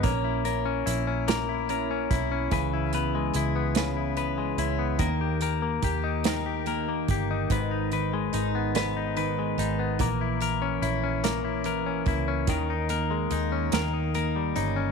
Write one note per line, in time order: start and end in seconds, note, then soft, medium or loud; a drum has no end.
0.00 0.12 G#2 medium
0.00 1.27 A#3 medium
0.00 0.11 B3 medium
0.00 0.45 C#4 medium
0.00 0.12 D#4 medium
0.00 0.87 A#4 medium
0.00 0.44 A#4 medium
0.00 kick loud
0.00 closed hi-hat medium
0.04 0.83 A#1 loud
0.24 0.86 E4 medium
0.45 1.69 C#4 medium
0.45 1.27 A#4 medium
0.45 closed hi-hat medium
0.66 1.07 C#4 medium
0.86 2.07 A#1 loud
0.86 1.49 E4 medium
0.86 2.60 A#4 medium
0.86 closed hi-hat medium
1.07 1.90 C#4 medium
1.28 2.60 A#3 medium
1.28 2.10 E4 medium
1.28 1.69 A#4 medium
1.28 snare loud
1.28 closed hi-hat loud
1.49 2.10 E4 medium
1.69 2.93 C#4 medium
1.69 2.52 A#4 medium
1.69 closed hi-hat medium
1.91 2.31 C#4 medium
2.11 2.49 B1 medium
2.11 2.73 E4 medium
2.11 3.74 E4 medium
2.11 kick loud
2.11 closed hi-hat medium
2.32 2.98 C#4 medium
2.51 3.30 C#2 loud
2.51 3.75 C#3 medium
2.51 5.00 E3 medium
2.51 2.93 B4 medium
2.51 kick medium
2.51 closed hi-hat loud
2.73 3.35 E4 medium
2.93 4.15 B3 medium
2.93 3.76 B4 medium
2.93 closed hi-hat medium
3.15 4.37 G#3 medium
3.34 4.55 C#2 medium
3.34 3.95 E4 medium
3.34 5.08 G#4 medium
3.34 closed hi-hat medium
3.56 4.78 B3 medium
3.75 4.98 C#3 loud
3.75 4.57 C#4 medium
3.75 4.16 B4 medium
3.75 snare loud
3.75 closed hi-hat loud
3.97 4.57 E4 medium
4.17 4.99 B3 medium
4.17 4.99 B4 medium
4.17 closed hi-hat medium
4.38 5.08 G#3 medium
4.58 4.97 C#2 loud
4.58 5.08 C#4 medium
4.58 5.08 E4 medium
4.58 closed hi-hat medium
4.79 5.08 B3 medium
4.99 5.79 D#2 loud
4.99 6.25 D#3 medium
4.99 5.41 A#3 medium
4.99 5.41 A#4 medium
4.99 kick medium
4.99 closed hi-hat medium
5.21 5.83 G4 medium
5.41 6.65 A#3 medium
5.41 6.25 A#4 medium
5.41 closed hi-hat medium
5.62 6.87 A#3 medium
5.82 7.04 D#2 medium
5.82 7.59 G4 medium
5.82 6.45 G4 medium
5.82 kick loud
5.82 closed hi-hat medium
6.04 7.30 D#4 medium
6.24 9.76 D#3 medium
6.24 7.08 D#4 medium
6.24 6.66 A#4 medium
6.24 snare loud
6.24 closed hi-hat loud
6.46 7.09 G4 medium
6.66 7.59 A#3 medium
6.66 7.51 A#4 medium
6.66 closed hi-hat medium
6.88 7.59 A#3 medium
7.08 7.48 G1 medium
7.08 8.32 D#4 medium
7.08 7.60 G4 medium
7.08 kick medium
7.08 closed hi-hat medium
7.31 7.71 D#4 medium
7.50 8.30 G#1 loud
7.50 8.74 G#2 medium
7.50 7.91 D#3 medium
7.50 7.92 B4 medium
7.50 kick medium
7.50 closed hi-hat medium
7.71 8.33 D#4 medium
7.92 9.15 D#3 medium
7.92 8.75 B4 medium
7.92 closed hi-hat medium
8.14 9.37 G#3 medium
8.33 9.55 G#1 loud
8.33 10.08 D#4 medium
8.33 8.95 D#4 medium
8.33 closed hi-hat medium
8.55 9.78 B3 medium
8.75 10.08 G#2 medium
8.75 9.57 B3 medium
8.75 9.16 B4 medium
8.75 snare loud
8.75 closed hi-hat loud
8.97 9.58 D#4 medium
9.16 9.99 D#3 medium
9.16 10.00 B4 medium
9.16 closed hi-hat medium
9.39 10.00 G#3 medium
9.58 9.97 G#1 medium
9.58 10.08 B3 medium
9.58 10.09 D#4 medium
9.58 closed hi-hat medium
9.79 10.08 B3 medium
9.99 10.78 A#1 loud
9.99 10.39 E3 medium
9.99 11.23 A#3 medium
9.99 10.42 A#4 medium
9.99 kick loud
9.99 closed hi-hat medium
10.21 10.81 E4 medium
10.40 11.63 E3 medium
10.40 11.24 A#4 medium
10.40 closed hi-hat medium
10.62 11.03 C#4 medium
10.82 12.02 A#1 medium
10.82 14.32 C#4 medium
10.82 11.43 E4 medium
10.82 closed hi-hat medium
11.04 11.86 C#4 medium
11.24 13.10 A#3 medium
11.24 12.05 A#3 medium
11.24 11.65 A#4 medium
11.24 snare loud
11.24 closed hi-hat loud
11.45 12.06 E4 medium
11.64 12.47 E3 medium
11.64 12.49 A#4 medium
11.64 closed hi-hat medium
11.86 12.27 C#4 medium
12.06 12.46 C#2 medium
12.06 12.89 A#3 medium
12.06 12.57 E4 medium
12.06 kick loud
12.06 closed hi-hat medium
12.28 12.73 C#4 medium
12.47 13.27 D#2 loud
12.47 14.59 D#3 medium
12.47 13.73 D#3 medium
12.47 12.90 A#4 medium
12.47 kick loud
12.47 closed hi-hat medium
12.70 13.32 D#4 medium
12.89 13.71 A#3 medium
12.89 13.73 A#4 medium
12.89 closed hi-hat medium
13.11 13.81 G#3 medium
13.31 13.70 D#2 loud
13.31 13.93 D#4 medium
13.31 13.81 G#4 medium
13.31 closed hi-hat medium
13.52 13.81 C#4 medium
13.72 14.52 D#2 loud
13.72 14.92 D#3 medium
13.72 14.13 A#3 medium
13.72 14.14 A#4 medium
13.72 snare loud
13.72 closed hi-hat loud
13.94 14.56 D#4 medium
14.14 14.92 A#3 medium
14.14 14.92 A#4 medium
14.14 closed hi-hat soft
14.36 14.92 G3 medium
14.56 14.92 G1 loud
14.56 14.92 C#4 medium
14.56 14.92 D#4 medium
14.56 closed hi-hat medium
14.76 14.92 C#4 medium